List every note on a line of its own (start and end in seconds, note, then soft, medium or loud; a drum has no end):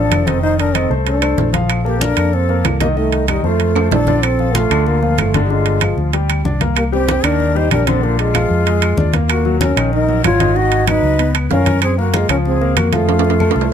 0.00 0.21 F3 medium
0.00 0.28 D4 medium
0.00 0.22 F4 medium
0.00 0.22 A4 medium
0.00 0.26 A4 medium
0.11 0.85 F1 medium
0.11 high conga medium
0.11 high timbale medium
0.11 low timbale medium
0.11 claves medium
0.26 0.40 D#3 medium
0.26 0.42 C4 medium
0.26 0.40 D#4 medium
0.26 0.42 A4 medium
0.26 0.40 D#5 medium
0.26 high conga medium
0.26 high timbale medium
0.42 0.69 D#3 medium
0.42 0.58 D#4 medium
0.42 0.69 D#4 medium
0.42 0.57 C5 medium
0.42 0.69 D#5 medium
0.42 high conga soft
0.58 0.77 D4 medium
0.58 0.76 A#4 medium
0.58 high conga soft
0.58 high timbale medium
0.75 0.88 D#3 medium
0.75 0.91 C4 medium
0.75 0.88 D#4 medium
0.75 0.91 A4 medium
0.75 0.88 D#5 medium
0.75 high conga soft
0.75 high timbale medium
0.75 claves medium
0.90 1.35 C2 medium
0.90 1.16 A3 medium
0.90 1.17 A4 medium
0.90 1.17 C5 medium
0.90 high conga soft
1.06 1.51 D4 medium
1.06 1.50 A4 medium
1.06 high conga soft
1.06 high timbale medium
1.22 1.48 A3 medium
1.22 1.48 A4 medium
1.22 1.48 C5 medium
1.22 high conga soft
1.22 high timbale medium
1.22 claves medium
1.38 2.12 A#1 medium
1.38 high conga medium
1.38 low timbale medium
1.53 1.79 F3 medium
1.53 1.80 F4 medium
1.53 1.80 F5 medium
1.53 high conga medium
1.53 high timbale medium
1.69 high conga soft
1.69 high timbale medium
1.69 claves medium
1.85 2.11 A#3 medium
1.85 2.03 A#3 medium
1.85 2.03 G4 medium
1.85 2.11 A4 medium
1.85 2.11 A#4 medium
1.85 high conga soft
2.01 2.35 D4 medium
2.01 2.35 A#4 medium
2.01 high conga medium
2.01 high timbale medium
2.17 2.62 F2 medium
2.17 2.43 A#3 medium
2.17 2.43 A4 medium
2.17 2.43 A#4 medium
2.17 high conga soft
2.17 high timbale medium
2.17 claves medium
2.33 2.65 C4 medium
2.33 2.65 A4 medium
2.33 high conga soft
2.49 2.75 A#3 medium
2.49 2.75 A4 medium
2.49 2.75 A#4 medium
2.49 high conga soft
2.64 3.38 C2 medium
2.64 high conga medium
2.64 high timbale medium
2.64 low timbale medium
2.64 claves medium
2.80 2.94 D#3 medium
2.80 2.88 A#3 medium
2.80 2.94 D#4 medium
2.80 2.87 G4 medium
2.80 2.94 D#5 medium
2.80 high conga medium
2.80 high timbale medium
2.96 3.22 D#3 medium
2.96 3.26 A3 medium
2.96 3.26 D#4 medium
2.96 3.23 D#4 medium
2.96 3.23 D#5 medium
2.96 high conga soft
3.12 high conga soft
3.12 high timbale medium
3.28 3.41 D#3 medium
3.28 3.44 G3 medium
3.28 3.41 D#4 medium
3.28 3.44 D#4 medium
3.28 3.42 D#5 medium
3.28 high conga soft
3.28 high timbale medium
3.28 claves medium
3.43 3.88 F2 medium
3.43 3.70 A3 medium
3.43 3.89 A3 medium
3.43 3.89 F4 medium
3.43 3.70 A4 medium
3.43 3.70 C5 medium
3.43 high conga soft
3.60 high conga soft
3.60 high timbale medium
3.75 4.02 A3 medium
3.75 4.02 A4 medium
3.75 4.02 C5 medium
3.75 high conga soft
3.75 high timbale medium
3.75 claves medium
3.91 4.65 A#1 medium
3.91 4.25 D4 medium
3.91 4.23 A4 medium
3.91 high conga medium
3.91 low timbale medium
4.07 4.21 D3 medium
4.07 4.21 D4 medium
4.07 4.21 D5 medium
4.07 high conga medium
4.07 low timbale medium
4.23 4.56 C4 medium
4.23 4.57 A4 medium
4.23 high conga soft
4.23 high timbale medium
4.23 claves medium
4.39 4.65 F3 medium
4.39 4.66 F4 medium
4.39 high conga soft
4.55 4.88 A3 medium
4.55 4.86 F4 medium
4.55 high conga medium
4.55 high timbale medium
4.70 5.15 D2 medium
4.70 4.97 D3 medium
4.70 4.97 D4 medium
4.70 high conga soft
4.70 high timbale medium
4.70 claves medium
4.86 5.20 A#3 medium
4.86 5.18 F4 medium
4.86 high conga soft
5.02 5.28 F3 medium
5.02 5.29 F4 medium
5.02 high conga soft
5.18 5.92 G1 medium
5.18 5.43 A3 medium
5.18 5.43 F4 medium
5.18 high conga medium
5.18 high timbale medium
5.18 low timbale medium
5.18 claves medium
5.34 5.48 D3 medium
5.34 5.48 D4 medium
5.34 high conga medium
5.34 high timbale medium
5.44 5.52 G3 medium
5.44 5.52 D#4 soft
5.50 5.76 D3 medium
5.50 5.98 G#3 medium
5.50 5.76 D4 medium
5.50 5.98 F4 medium
5.50 high conga soft
5.66 high conga soft
5.66 high timbale medium
5.81 6.08 F3 medium
5.81 6.08 F4 medium
5.81 high conga soft
5.81 high timbale medium
5.81 claves medium
5.97 6.41 D2 medium
5.97 high conga soft
6.13 6.39 G3 medium
6.13 6.40 G4 medium
6.13 high conga soft
6.13 high timbale medium
6.29 high conga soft
6.29 high timbale medium
6.29 claves medium
6.45 7.18 C2 medium
6.45 6.58 D4 medium
6.45 6.58 D5 medium
6.45 high conga medium
6.61 6.87 A#3 medium
6.61 6.87 A#4 medium
6.61 high conga medium
6.61 high timbale medium
6.76 6.84 A#3 medium
6.76 6.83 G4 medium
6.76 high conga soft
6.76 high timbale medium
6.76 claves medium
6.92 7.18 G3 medium
6.92 7.26 C4 medium
6.92 7.18 G4 medium
6.92 7.26 G4 medium
6.92 high conga soft
7.08 high conga medium
7.08 high timbale medium
7.23 7.68 D#2 loud
7.23 7.50 D#3 medium
7.23 7.50 D4 medium
7.23 7.58 D4 medium
7.23 7.58 A#4 medium
7.23 high conga soft
7.23 high timbale medium
7.23 claves medium
7.40 high conga soft
7.55 7.81 G3 medium
7.55 7.71 D#4 medium
7.55 7.82 G4 medium
7.55 7.72 C5 medium
7.55 high conga soft
7.71 8.45 A#1 medium
7.71 7.89 D4 medium
7.71 7.89 A#4 medium
7.71 high conga medium
7.71 high timbale medium
7.71 claves medium
7.87 8.00 D3 medium
7.87 8.05 C4 medium
7.87 8.00 D4 medium
7.87 8.05 A4 medium
7.87 high conga medium
7.87 high timbale medium
8.03 8.29 D3 medium
8.03 8.21 A#3 medium
8.03 8.29 D4 medium
8.03 8.19 F4 medium
8.03 high conga soft
8.19 9.14 G#3 medium
8.19 9.14 F4 medium
8.19 high conga soft
8.19 high timbale medium
8.34 8.61 F3 medium
8.34 8.61 F4 medium
8.34 high conga medium
8.34 high timbale medium
8.34 claves medium
8.50 8.94 F2 loud
8.50 high conga soft
8.66 8.92 G#3 medium
8.66 8.93 G#4 medium
8.66 high conga soft
8.66 high timbale medium
8.82 high conga soft
8.82 high timbale medium
8.82 claves medium
8.97 9.71 D#2 medium
8.97 9.11 D4 medium
8.97 9.11 D5 medium
8.97 high conga medium
9.13 9.39 A#3 medium
9.13 9.40 A#4 medium
9.13 high conga medium
9.13 high timbale medium
9.30 9.59 A#3 medium
9.30 9.59 F#4 medium
9.30 high conga soft
9.30 high timbale medium
9.30 claves medium
9.45 9.71 F#3 medium
9.45 9.71 F#4 medium
9.45 high conga soft
9.61 9.91 C#4 medium
9.61 9.90 A#4 medium
9.61 high conga medium
9.61 high timbale medium
9.76 10.21 A#1 medium
9.76 10.03 D#3 medium
9.76 10.03 D#4 medium
9.76 high conga soft
9.76 high timbale medium
9.76 claves medium
9.93 10.22 D#4 medium
9.93 10.22 A#4 medium
9.93 high conga soft
10.09 10.34 F#3 medium
10.09 10.35 F#4 medium
10.09 high conga soft
10.24 10.97 G#1 medium
10.24 10.58 F4 loud
10.24 10.58 C#5 medium
10.24 high conga medium
10.24 high timbale medium
10.24 low timbale medium
10.24 claves medium
10.40 10.53 D#3 medium
10.40 10.53 D#4 medium
10.40 high conga medium
10.40 high timbale medium
10.56 10.82 D#3 medium
10.56 10.82 D#4 medium
10.56 10.88 F#4 loud
10.56 10.87 D#5 medium
10.56 high conga soft
10.72 high conga soft
10.72 high timbale medium
10.87 11.13 F#3 medium
10.87 11.32 D#4 medium
10.87 11.14 F#4 medium
10.87 11.32 B4 medium
10.87 high conga medium
10.87 high timbale medium
10.87 claves medium
11.03 11.47 C#2 medium
11.03 high conga soft
11.19 11.45 B3 medium
11.19 11.45 B4 medium
11.19 high conga soft
11.19 high timbale medium
11.35 high conga soft
11.35 high timbale medium
11.35 claves medium
11.50 12.23 F#2 medium
11.50 11.80 C#4 loud
11.50 11.64 F4 medium
11.50 11.80 A#4 medium
11.50 11.64 F5 medium
11.50 high conga medium
11.50 low timbale medium
11.66 11.92 C#4 medium
11.66 11.92 C#5 medium
11.66 high conga medium
11.66 high timbale medium
11.82 11.97 C4 medium
11.82 11.97 G#4 medium
11.82 high conga soft
11.82 high timbale medium
11.82 claves medium
11.98 12.24 A#3 medium
11.98 12.16 A#3 medium
11.98 12.16 F#4 medium
11.98 12.24 A#4 medium
11.98 high conga soft
12.14 12.30 G#3 medium
12.14 12.30 F4 medium
12.14 high conga medium
12.14 high timbale medium
12.29 12.73 C#2 medium
12.29 12.55 F3 medium
12.29 12.37 C#4 medium
12.29 12.55 F4 medium
12.29 12.36 A#4 medium
12.29 high conga soft
12.29 high timbale medium
12.29 claves medium
12.45 12.80 C4 medium
12.45 12.79 G#4 medium
12.45 high conga soft
12.61 12.87 A#3 medium
12.61 12.87 A#4 medium
12.61 high conga soft
12.76 13.50 F2 medium
12.76 12.95 A#3 medium
12.76 12.94 F#4 medium
12.76 high conga medium
12.76 high timbale medium
12.76 claves medium
12.92 13.05 F3 medium
12.92 13.73 A3 medium
12.92 13.06 F4 medium
12.92 13.73 F4 medium
12.92 high conga medium
12.92 high timbale medium
13.08 13.34 F3 medium
13.08 13.34 F4 medium
13.08 high conga soft
13.08 high timbale medium
13.19 high timbale medium
13.25 high conga soft
13.30 high timbale medium
13.40 13.66 A3 medium
13.40 13.66 A4 medium
13.40 high conga medium
13.40 claves medium
13.51 high timbale medium
13.55 13.73 C2 loud
13.55 high conga soft
13.61 low timbale medium